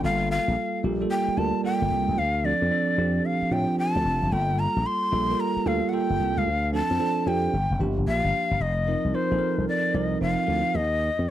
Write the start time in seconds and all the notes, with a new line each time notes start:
0.03 G1 G3 A#3 F4 A4 F5
0.31 F5
0.48 A#1
0.83 A#1 G3 A#3 F4 G4
1.01 G3 A#3 F4 A4
1.11 G5
1.28 muted slap bass stroke
1.37 D2 G3 A#3 F4 A#4 A5
1.64 G3 A#3 F4 A4 G5
1.82 G1
1.91 C2
2.08 C#2
2.18 D2 F5
2.44 F3 C4 D4 A4 D5
2.62 F2
2.71 F3 C4 D4 A4
2.98 F2 F3 C4 D4 G4
3.26 F5
3.42 muted slap bass stroke
3.51 A2 F3 C4 D4 F4 G5
3.79 A5
3.96 D2
4.05 F1
4.23 F#1
4.31 G1 G3 A#3 F4 A4 G5
4.59 A#5
4.76 A#1
4.86 C6
5.12 A#1 G3 A#3 F4 A4
5.29 G3 A#3 F4 A#4
5.40 A#5
5.57 muted slap bass stroke
5.66 D2 G3 A#3 F4 A4 F5
5.89 G3 A#3 F#5
5.93 F4 A4 G5
6.10 G1
6.19 C2
6.37 C#2 F5
6.46 D2
6.73 F3 C4 D4 A4 A5
6.91 F2
6.99 F3 C4 D4 A4
7.26 F2 F3 C4 D4 G4 G5
7.53 G1
7.71 F1
7.79 G1 F3 A#3 D4 G4
7.98 G1
8.07 A#1 F5
8.24 G1
8.51 G1
8.60 F1 D#5
8.87 F3 C4 D#4 A#4
9.05 C2
9.14 F3 C4 D#4 A#4 C5
9.31 A#1 F3 C4 D#4 A4
9.38 A#4
9.58 C2
9.69 D5
9.94 C2 F3 C4 D#4 A#4 D#5
10.21 F1 F3 C4 D#4 F4 F5
10.48 D2
10.75 D#2 D#5
11.19 F2